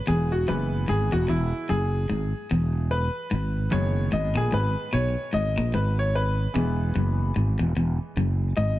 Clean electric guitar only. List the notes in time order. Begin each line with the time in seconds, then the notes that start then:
0.07 E2
0.48 F#2
0.88 G#2
1.12 E2
1.28 E2
1.69 F#2
2.10 G#2
2.51 E2
3.31 G#2
3.72 F#2
4.12 G#2
4.36 A#2
4.52 G#2
4.93 B2
5.33 G#2
5.58 A#2
5.74 G#2
6.55 E2
6.95 F#2
7.36 G#2
7.59 E2
7.77 E2
8.17 F#2
8.57 G#2